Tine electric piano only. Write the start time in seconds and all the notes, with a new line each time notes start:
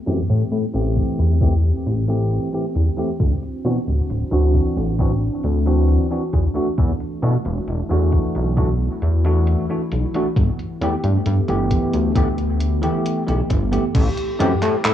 0.07 E3 A3 C4 G4
0.74 E3 A3 C4 G4
1.41 E3 A3 C4 G4
2.08 E3 A3 C4 G4
2.53 E3 A3 C4 G4
2.97 E3 A3 C4 G4
3.65 E3 C4 D4 F#4
4.31 E3 C4 D4 F#4
4.99 E3 C4 D4 F#4
5.66 E3 C4 D4 F#4
6.10 E3 C4 D4 F#4
6.54 E3 A3 D4 F#4
7.22 E3 A3 D4 F#4
7.89 E3 A3 D4 F#4
8.57 E3 A3 D4 F#4
9.24 E3 A3 D4 F#4
9.69 E3 A3 D4 F#4
10.14 E3 A3 D4 F#4
10.82 E3 A3 B3 G4
11.48 E3 A3 B3 G4
12.15 E3 A3 B3 G4
12.82 E3 A3 B3 G4
13.27 E3 A3 B3 G4
13.72 E3 A3 B3 G4
14.39 E3 A3 C4 G4